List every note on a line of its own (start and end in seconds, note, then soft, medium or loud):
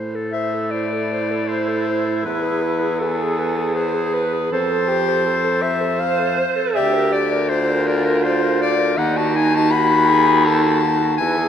0.00 2.26 A2 medium
0.00 0.17 C5 medium
0.15 0.35 A4 medium
0.32 0.56 C5 medium
0.32 0.72 E5 loud
0.54 0.72 A4 medium
0.71 3.04 E4 medium
0.71 0.94 C5 medium
0.71 1.49 D5 loud
0.93 1.14 A4 medium
1.12 1.33 C5 medium
1.31 1.48 A4 medium
1.48 2.24 C5 loud
1.48 1.70 C5 medium
1.69 1.89 A4 medium
1.88 2.07 C5 medium
2.05 2.23 A4 medium
2.23 4.50 E2 medium
2.23 2.44 B4 medium
2.23 3.00 B4 loud
2.42 2.64 G#4 medium
2.62 2.82 B4 medium
2.80 3.00 G#4 medium
2.99 3.77 G#4 medium
2.99 3.76 A4 loud
2.99 3.22 B4 medium
3.20 3.40 G#4 medium
3.38 3.57 B4 medium
3.56 3.75 G#4 medium
3.74 4.51 G#4 loud
3.74 3.96 B4 medium
3.74 4.15 C5 medium
3.95 4.16 G#4 medium
4.14 4.51 B4 medium
4.14 4.35 B4 medium
4.33 4.52 G#4 medium
4.51 6.43 F2 medium
4.51 4.90 A4 medium
4.51 4.72 C5 medium
4.51 5.63 C5 loud
4.71 4.90 A4 medium
4.88 5.25 G4 loud
4.88 5.10 C5 medium
5.08 5.25 A4 medium
5.26 5.62 A4 medium
5.26 5.46 C5 medium
5.45 5.64 A4 medium
5.62 6.76 C5 loud
5.62 5.83 C5 medium
5.62 6.01 E5 loud
5.81 5.99 A4 medium
5.99 6.20 C5 medium
5.99 6.48 F5 loud
6.19 6.39 A4 medium
6.38 6.57 C5 medium
6.56 6.74 A4 medium
6.75 8.93 D2 loud
6.75 7.23 G4 loud
6.75 6.96 D5 medium
6.75 7.14 E5 loud
6.94 7.14 A#4 medium
7.12 7.50 D5 loud
7.12 7.34 D5 medium
7.33 7.50 A#4 medium
7.49 8.93 F4 medium
7.49 7.89 C5 loud
7.49 7.71 D5 medium
7.70 7.89 A#4 medium
7.87 8.25 A#4 loud
7.87 8.06 D5 medium
8.05 8.23 A#4 medium
8.23 8.60 C5 loud
8.23 8.44 D5 medium
8.43 8.62 A#4 medium
8.60 8.80 D5 medium
8.60 8.99 D5 loud
8.79 8.97 A#4 medium
8.97 11.16 D#2 loud
8.97 9.73 D#4 medium
8.97 9.18 D#4 medium
8.97 9.18 F#5 loud
9.17 9.37 F#4 medium
9.17 9.38 A5 loud
9.36 9.56 D#4 medium
9.36 9.57 G#5 loud
9.54 9.72 F#4 medium
9.54 9.72 A5 loud
9.71 9.93 D#4 medium
9.71 10.10 F#4 medium
9.71 10.47 B5 loud
9.91 10.12 F#4 medium
10.08 10.30 D#4 medium
10.08 10.47 G#4 loud
10.29 10.46 F#4 medium
10.45 10.68 D#4 medium
10.45 10.84 A4 medium
10.45 11.16 A5 loud
10.67 10.86 F#4 medium
10.82 11.04 D#4 medium
10.82 11.19 F#4 medium
11.03 11.19 F#4 medium
11.17 11.48 E2 medium
11.17 11.48 E4 loud
11.17 11.39 B4 medium
11.17 11.48 G#5 loud
11.38 11.48 G#4 medium